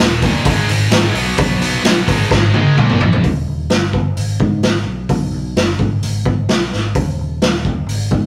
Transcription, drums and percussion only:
0.22 kick medium
0.22 open hi-hat medium
0.45 kick loud
0.45 open hi-hat medium
0.69 open hi-hat medium
0.91 snare loud
0.91 open hi-hat medium
1.15 open hi-hat medium
1.38 kick loud
1.38 open hi-hat medium
1.62 open hi-hat medium
1.85 snare loud
1.85 open hi-hat medium
2.08 kick medium
2.08 open hi-hat medium
2.31 kick loud
2.31 snare medium
2.54 high tom medium
2.77 mid tom medium
2.89 mid tom medium
3.00 floor tom loud
3.13 floor tom loud
3.24 kick medium
3.24 open hi-hat soft
3.70 snare medium
3.70 open hi-hat soft
3.93 kick medium
4.17 open hi-hat soft
4.40 kick medium
4.63 snare loud
4.63 open hi-hat soft
5.09 kick medium
5.09 open hi-hat soft
5.57 snare medium
5.57 open hi-hat soft
5.79 kick medium
6.03 open hi-hat soft
6.25 kick medium
6.49 snare loud
6.49 open hi-hat soft
6.72 snare soft
6.95 kick loud
6.95 open hi-hat soft
7.42 snare loud
7.42 open hi-hat soft
7.65 kick medium
7.89 open hi-hat soft
8.11 kick medium

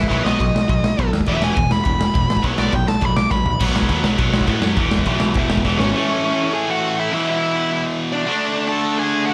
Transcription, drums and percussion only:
0.04 kick medium
0.11 kick loud
0.11 crash medium
0.26 snare loud
0.40 kick loud
0.40 crash medium
0.56 snare loud
0.69 kick loud
0.69 crash medium
0.84 snare loud
0.99 kick loud
0.99 crash medium
1.13 snare loud
1.21 kick medium
1.26 kick medium
1.26 crash medium
1.42 snare loud
1.56 kick loud
1.56 crash medium
1.71 snare loud
1.85 kick loud
1.85 crash medium
2.01 snare loud
2.15 kick loud
2.15 crash medium
2.30 snare loud
2.37 kick medium
2.43 kick loud
2.43 crash medium
2.58 snare loud
2.72 kick loud
2.72 crash medium
2.88 snare loud
3.01 kick loud
3.01 crash medium
3.17 snare loud
3.30 kick loud
3.30 snare medium
3.46 floor tom loud
3.60 kick loud
3.60 crash loud
3.60 crash medium
3.76 snare loud
3.82 kick medium
3.89 kick loud
3.89 crash medium
4.04 snare loud
4.18 kick loud
4.18 crash medium
4.33 snare loud
4.41 kick medium
4.47 kick loud
4.47 crash medium
4.62 snare loud
4.76 kick loud
4.76 crash medium
4.91 snare loud
4.99 kick medium
5.06 kick loud
5.06 crash medium
5.20 snare loud
5.34 kick loud
5.34 crash medium
5.50 snare loud
5.57 kick medium
5.65 kick loud
5.65 snare medium
5.80 snare loud

